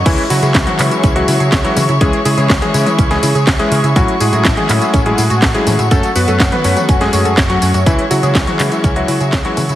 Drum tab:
CC |x---------------|----------------|----------------|----------------|
HH |xxoxxxoxxxoxxxox|xxoxxxoxxxoxxxox|xxoxxxoxxxoxxxox|xxoxxxoxxxoxxxox|
TB |x-xxx-xxx-xxx-xx|x-xxx-xxx-xxx-xx|x-xxx-xxx-xxx-xx|xxxxx-xxx-xxx-xx|
CP |----x-x-----x---|----x-------x---|----x-x-----x---|----x-------x---|
SD |----o-------o---|----o----o--o---|----o-------o---|----o----o--o---|
T1 |-----o--------o-|-----o-o--------|-----o--------o-|-----o-o--------|
BD |o---o---o---o---|o---o---o---o---|o---o---o---o---|o---o---o---o---|

CC |----------------|
HH |xxoxxxoxxxoxxxox|
TB |x-xxx-xxx-xxx-xx|
CP |----x-x-----x---|
SD |----o-------o---|
T1 |-----o--------o-|
BD |o---o---o---o---|